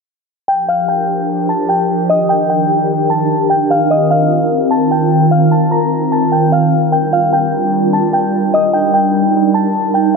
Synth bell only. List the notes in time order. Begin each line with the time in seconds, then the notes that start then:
0.48 G5 G6
0.69 F5 F6
0.88 G5 G6
1.49 A5 A6
1.69 G5 G6
2.10 D#5 D#6
2.29 G5 G6
2.50 G5 G6
3.10 A5 A6
3.50 G5 G6
3.71 F5 F6
3.91 D#5 D#6
4.11 F5 F6
4.71 A5 A6
4.91 G5 G6
5.31 F5 F6
5.52 A5 A6
5.71 A#5 A#6
6.12 A5 A6
6.32 G5 G6
6.52 F5 F6
6.92 G5 G6
7.13 F5 F6
7.33 G5 G6
7.93 A5 A6
8.13 G5 G6
8.54 D#5 D#6
8.73 G5 G6
8.94 G5 G6
9.54 A5 A6
9.94 G5 G6